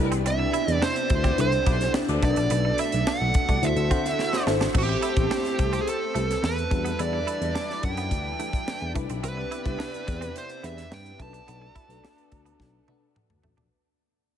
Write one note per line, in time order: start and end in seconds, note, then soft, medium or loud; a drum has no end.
0.00 0.47 C2 medium
0.00 3.59 B2 medium
0.00 2.20 C3 medium
0.00 0.24 G3 medium
0.00 0.87 D4 medium
0.00 3.58 D4 medium
0.00 0.24 E4 medium
0.00 0.87 E4 medium
0.00 2.20 E4 medium
0.00 0.87 G4 medium
0.00 0.24 B4 loud
0.05 0.91 B4 loud
0.12 0.21 C4 medium
0.12 closed hi-hat medium
0.26 0.35 C4 medium
0.26 0.71 E5 loud
0.26 closed hi-hat medium
0.40 muted clean electric guitar stroke soft
0.53 0.63 E4 medium
0.53 closed hi-hat medium
0.67 0.77 E2 medium
0.67 0.84 D5 loud
0.67 closed hi-hat soft
0.82 0.91 D4 medium
0.82 1.40 C5 medium
0.82 snare loud
0.96 closed hi-hat soft
1.10 1.30 D2 loud
1.10 muted clean electric guitar stroke soft
1.10 kick loud
1.10 closed hi-hat medium
1.23 1.35 B3 medium
1.23 1.33 C4 medium
1.23 1.35 G4 medium
1.23 1.35 D5 medium
1.23 kick medium
1.23 closed hi-hat soft
1.37 1.57 C2 medium
1.37 2.00 D4 medium
1.37 2.00 E4 medium
1.37 2.00 G4 medium
1.37 1.45 A4 medium
1.37 1.92 C5 medium
1.37 closed hi-hat medium
1.45 2.04 C5 medium
1.52 closed hi-hat soft
1.66 1.86 B1 medium
1.66 1.78 B3 medium
1.66 1.76 B3 medium
1.66 1.78 G4 medium
1.66 1.78 D5 medium
1.66 kick medium
1.66 closed hi-hat medium
1.80 snare soft
1.80 closed hi-hat soft
1.94 muted clean electric guitar stroke soft
1.94 snare loud
2.08 2.18 D2 medium
2.08 2.49 B3 medium
2.08 2.49 A4 medium
2.08 2.49 D5 loud
2.08 closed hi-hat soft
2.22 2.32 B1 medium
2.22 3.61 A3 medium
2.22 2.32 A3 medium
2.22 3.12 D4 medium
2.22 3.12 F#4 medium
2.22 3.12 A4 medium
2.22 3.12 B4 medium
2.22 2.80 D5 medium
2.22 kick loud
2.22 closed hi-hat medium
2.36 2.46 A#1 medium
2.36 2.46 D4 medium
2.36 closed hi-hat medium
2.50 2.70 B1 loud
2.50 2.60 B3 medium
2.50 closed hi-hat medium
2.65 muted clean electric guitar stroke soft
2.78 2.88 E4 medium
2.78 3.08 E5 loud
2.78 closed hi-hat medium
2.92 3.02 B1 medium
2.92 closed hi-hat soft
3.07 3.16 D4 medium
3.07 3.66 F#5 loud
3.07 snare loud
3.21 3.30 B1 medium
3.34 muted clean electric guitar stroke soft
3.34 kick loud
3.34 closed hi-hat medium
3.49 3.58 C2 medium
3.49 3.58 A3 medium
3.49 3.61 B3 medium
3.49 3.61 A4 medium
3.49 3.61 D5 medium
3.49 kick medium
3.49 closed hi-hat soft
3.62 3.72 D2 loud
3.62 4.73 D3 medium
3.62 4.73 C4 medium
3.62 4.25 E4 medium
3.62 4.74 E4 medium
3.62 4.25 F#4 medium
3.62 4.74 F#4 medium
3.62 4.25 A4 medium
3.62 4.25 C5 medium
3.62 4.44 E5 medium
3.62 closed hi-hat medium
3.76 3.90 D2 loud
3.76 closed hi-hat soft
3.91 4.10 D3 loud
3.91 4.03 A3 medium
3.91 4.00 C4 medium
3.91 4.03 F#4 medium
3.91 4.03 C5 medium
3.91 kick medium
3.91 closed hi-hat medium
4.06 snare soft
4.06 closed hi-hat soft
4.19 muted clean electric guitar stroke soft
4.19 snare medium
4.32 4.72 A3 medium
4.32 4.72 F#4 medium
4.32 4.73 C5 loud
4.32 snare medium
4.46 4.66 G#1 medium
4.46 4.56 D4 medium
4.46 4.67 E4 medium
4.46 4.68 F#4 medium
4.46 4.68 A4 medium
4.46 4.68 C5 medium
4.46 snare medium
4.61 4.70 D4 medium
4.61 snare loud
4.74 4.94 A1 loud
4.74 6.69 A3 medium
4.74 4.84 A3 medium
4.74 6.40 A3 medium
4.74 6.69 C4 medium
4.74 5.06 C4 medium
4.74 5.06 E4 medium
4.74 6.40 G4 medium
4.74 5.06 G4 medium
4.74 8.91 A4 medium
4.74 6.40 C5 medium
4.74 5.06 C5 medium
4.74 kick loud
4.74 crash medium
4.78 5.85 G4 medium
4.89 muted clean electric guitar stroke soft
5.02 5.12 E4 medium
5.02 closed hi-hat medium
5.17 5.26 A1 medium
5.17 5.23 B3 medium
5.17 5.90 E4 medium
5.17 5.90 G4 medium
5.17 5.90 C5 medium
5.17 kick loud
5.17 closed hi-hat soft
5.23 5.93 C4 medium
5.31 5.40 D4 medium
5.31 snare loud
5.45 snare soft
5.45 closed hi-hat soft
5.59 5.78 C2 medium
5.59 muted clean electric guitar stroke soft
5.59 kick medium
5.59 closed hi-hat medium
5.73 5.82 C4 medium
5.73 closed hi-hat soft
5.81 5.87 G#4 medium
5.88 6.44 A4 medium
5.88 closed hi-hat medium
6.15 6.34 C2 medium
6.15 6.24 A3 medium
6.15 6.71 C4 medium
6.15 6.71 E4 medium
6.15 6.72 G4 medium
6.15 6.71 B4 medium
6.15 closed hi-hat medium
6.30 snare soft
6.30 closed hi-hat medium
6.43 6.62 E2 medium
6.43 7.02 B4 medium
6.43 muted clean electric guitar stroke soft
6.43 snare loud
6.58 closed hi-hat soft
6.71 6.91 E2 medium
6.71 8.93 E3 medium
6.71 8.63 F#3 medium
6.71 8.63 G3 medium
6.71 7.27 G3 medium
6.71 6.80 A3 medium
6.71 7.27 D4 medium
6.71 13.68 D4 medium
6.71 8.93 E4 medium
6.71 7.27 F#4 medium
6.71 8.63 B4 medium
6.71 7.28 B4 medium
6.71 kick loud
6.71 closed hi-hat medium
6.85 6.94 B3 medium
6.85 closed hi-hat medium
6.99 7.19 E2 loud
6.99 7.08 E4 medium
6.99 7.86 D5 loud
6.99 closed hi-hat medium
7.13 muted clean electric guitar stroke soft
7.27 7.36 E4 medium
7.27 closed hi-hat medium
7.41 7.51 E2 medium
7.41 8.14 G3 medium
7.41 8.14 D4 medium
7.41 8.14 E4 medium
7.41 8.15 B4 medium
7.41 closed hi-hat soft
7.55 7.64 D4 medium
7.55 snare loud
7.70 snare soft
7.83 8.11 F#2 medium
7.83 8.92 G5 medium
7.83 muted clean electric guitar stroke soft
7.83 kick loud
7.83 closed hi-hat medium
7.97 8.07 B3 medium
7.97 closed hi-hat soft
8.11 8.31 D2 medium
8.11 kick medium
8.11 closed hi-hat medium
8.39 8.49 A3 medium
8.39 8.93 D4 medium
8.39 8.93 E4 medium
8.39 8.94 G4 medium
8.39 8.95 B4 medium
8.39 closed hi-hat medium
8.53 kick medium
8.53 closed hi-hat medium
8.68 muted clean electric guitar stroke soft
8.68 snare loud
8.81 8.91 E2 medium
8.94 9.05 C2 loud
8.94 11.18 C3 medium
8.94 9.05 A3 medium
8.94 10.88 B3 medium
8.94 13.68 B3 medium
8.94 9.51 D4 medium
8.94 9.51 E4 medium
8.94 11.18 E4 medium
8.94 9.51 G4 medium
8.94 10.88 G4 medium
8.94 9.52 B4 loud
8.94 10.88 D5 medium
8.94 kick loud
8.94 closed hi-hat medium
9.09 9.20 B1 medium
9.09 9.19 C4 medium
9.09 closed hi-hat medium
9.23 9.43 C2 loud
9.23 9.33 C4 medium
9.23 10.38 B4 medium
9.23 closed hi-hat medium
9.37 muted clean electric guitar stroke soft
9.51 9.61 E4 medium
9.51 closed hi-hat medium
9.65 9.75 C2 medium
9.65 10.38 D4 medium
9.65 10.38 E4 medium
9.65 10.39 G4 medium
9.65 10.39 B4 medium
9.65 kick loud
9.65 closed hi-hat soft
9.79 9.88 D4 medium
9.79 snare loud
9.94 closed hi-hat soft
10.07 10.27 E2 medium
10.07 muted clean electric guitar stroke soft
10.07 kick medium
10.07 closed hi-hat medium
10.21 10.31 C4 medium
10.21 closed hi-hat soft
10.36 10.66 C5 medium
10.36 closed hi-hat medium
10.49 closed hi-hat soft
10.63 10.83 E2 loud
10.63 10.73 B3 medium
10.63 11.19 D4 medium
10.63 11.20 E4 medium
10.63 11.20 G4 medium
10.63 11.19 B4 medium
10.63 10.93 E5 medium
10.63 closed hi-hat medium
10.78 snare soft
10.78 closed hi-hat soft
10.91 11.11 G2 medium
10.91 11.21 G5 medium
10.91 muted clean electric guitar stroke soft
10.91 snare loud
11.06 closed hi-hat soft
11.19 11.39 B1 medium
11.19 13.69 A3 medium
11.19 11.29 A3 medium
11.19 13.40 B3 medium
11.19 11.26 C#4 medium
11.19 11.76 F#4 medium
11.19 13.40 A4 medium
11.19 11.76 A4 medium
11.19 11.76 B4 medium
11.19 13.40 D5 medium
11.19 13.13 A5 loud
11.19 kick loud
11.19 closed hi-hat medium
11.26 11.79 D4 medium
11.33 11.43 D4 medium
11.33 closed hi-hat medium
11.47 11.67 B1 loud
11.47 11.57 B3 medium
11.47 closed hi-hat medium
11.62 muted clean electric guitar stroke soft
11.75 11.85 E4 medium
11.75 kick medium
11.75 closed hi-hat medium
11.89 11.99 B1 medium
11.89 12.63 D4 medium
11.89 12.63 F#4 medium
11.89 12.63 A4 medium
11.89 12.63 B4 loud
11.89 closed hi-hat soft
12.04 12.13 D4 medium
12.04 snare loud
12.18 closed hi-hat soft
12.32 12.52 D2 medium
12.32 muted clean electric guitar stroke soft
12.32 kick medium
12.32 closed hi-hat medium
12.46 12.55 B3 medium
12.46 closed hi-hat soft
12.60 12.79 B1 medium
12.60 kick medium
12.60 snare medium
12.88 12.97 A3 medium
12.88 13.51 D4 medium
12.88 13.51 F#4 medium
12.88 13.51 A4 medium
12.88 13.51 B4 medium
12.88 high tom medium
13.16 muted clean electric guitar stroke soft
13.16 mid tom medium
13.30 13.40 D2 medium
13.30 mid tom medium
13.43 13.54 A1 medium
13.43 13.53 A3 medium
13.43 floor tom medium
13.57 13.67 A#1 medium
13.57 13.67 D4 medium
13.57 floor tom medium